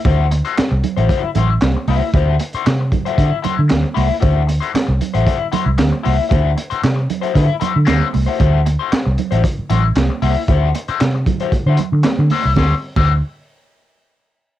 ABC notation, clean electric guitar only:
X:1
M:4/4
L:1/16
Q:1/4=115
K:Dmix
V:1 name="Clean electric guitar"
[EFc]2 z [EFc] z3 [EFc] [EFc]2 [EFc] z3 [EFc]2 | [EFc]2 z [EFc] z3 [EFc] [EFc]2 [EFc] z3 [EFc]2 | [EFc]2 z [EFc] z3 [EFc] [EFc]2 [EFc] z3 [EFc]2 | [EFc]2 z [EFc] z3 [EFc] [EFc]2 [EFc] z [EFc]2 z [EFc] |
[EFc]2 z [EFc] z3 [EFc]2 z [EFc] z3 [EFc]2 | [EFc]2 z [EFc] z3 [EFc]2 [EFc]2 z3 [EFc]2 | [EFc] z2 [EFc] z12 |]